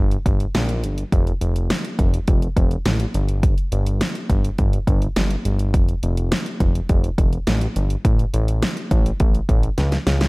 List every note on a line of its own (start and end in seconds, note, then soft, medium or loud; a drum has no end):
0.00 0.17 G1 loud
0.11 closed hi-hat soft
0.26 0.46 G1 medium
0.26 kick medium
0.26 closed hi-hat medium
0.40 closed hi-hat soft
0.55 0.85 A#1 loud
0.55 snare loud
0.55 closed hi-hat medium
0.69 closed hi-hat medium
0.84 1.04 G1 medium
0.84 closed hi-hat medium
0.98 closed hi-hat soft
1.12 1.33 F1 loud
1.12 kick loud
1.12 closed hi-hat medium
1.27 closed hi-hat soft
1.41 1.72 F1 medium
1.41 closed hi-hat medium
1.56 closed hi-hat soft
1.70 snare loud
1.70 closed hi-hat medium
1.85 closed hi-hat soft
1.99 2.19 F1 medium
1.99 kick medium
1.99 closed hi-hat medium
2.14 closed hi-hat medium
2.28 2.48 F1 medium
2.28 kick medium
2.28 closed hi-hat medium
2.42 closed hi-hat soft
2.57 2.77 F1 loud
2.57 kick medium
2.57 closed hi-hat medium
2.71 closed hi-hat soft
2.85 3.06 A1 medium
2.85 snare loud
2.85 closed hi-hat medium
3.00 closed hi-hat medium
3.14 3.55 G1 medium
3.14 closed hi-hat medium
3.29 closed hi-hat soft
3.43 kick loud
3.43 closed hi-hat medium
3.58 closed hi-hat soft
3.72 4.02 G1 loud
3.72 closed hi-hat medium
3.87 closed hi-hat soft
4.01 snare loud
4.01 closed hi-hat medium
4.15 closed hi-hat soft
4.30 4.50 G1 loud
4.30 kick medium
4.30 closed hi-hat medium
4.45 closed hi-hat medium
4.58 4.79 G1 loud
4.58 kick medium
4.58 closed hi-hat medium
4.73 closed hi-hat soft
4.87 5.08 G1 loud
4.87 kick medium
4.87 closed hi-hat medium
5.02 closed hi-hat soft
5.16 5.37 G1 medium
5.16 snare loud
5.16 closed hi-hat medium
5.31 closed hi-hat medium
5.45 5.75 G1 loud
5.45 closed hi-hat medium
5.59 closed hi-hat soft
5.74 5.94 F1 loud
5.74 kick loud
5.74 closed hi-hat medium
5.89 closed hi-hat soft
6.03 6.33 F1 loud
6.03 closed hi-hat medium
6.17 closed hi-hat soft
6.32 snare loud
6.32 closed hi-hat medium
6.46 closed hi-hat soft
6.60 6.81 F1 loud
6.60 kick medium
6.60 closed hi-hat medium
6.75 closed hi-hat medium
6.89 7.10 F1 loud
6.89 kick medium
6.89 closed hi-hat medium
7.04 closed hi-hat soft
7.18 7.38 F1 medium
7.18 kick medium
7.18 closed hi-hat medium
7.33 closed hi-hat soft
7.47 7.67 A1 loud
7.47 snare loud
7.47 closed hi-hat medium
7.61 closed hi-hat medium
7.76 7.96 G1 medium
7.76 closed hi-hat medium
7.90 closed hi-hat soft
8.05 8.25 A1 loud
8.05 kick loud
8.05 closed hi-hat medium
8.19 closed hi-hat soft
8.34 8.64 A1 loud
8.34 closed hi-hat medium
8.48 closed hi-hat soft
8.62 snare loud
8.62 closed hi-hat medium
8.77 closed hi-hat soft
8.91 9.11 A1 loud
8.91 kick medium
8.91 closed hi-hat medium
9.06 closed hi-hat medium
9.20 9.40 A1 loud
9.20 kick medium
9.20 closed hi-hat medium
9.35 closed hi-hat soft
9.49 9.69 A1 loud
9.49 kick medium
9.49 closed hi-hat medium
9.63 closed hi-hat soft
9.78 9.98 C#2 medium
9.78 snare medium
9.78 closed hi-hat medium
9.92 snare medium
9.92 closed hi-hat medium
10.07 10.27 C#2 medium
10.07 snare medium
10.07 closed hi-hat medium
10.21 snare medium
10.21 closed hi-hat soft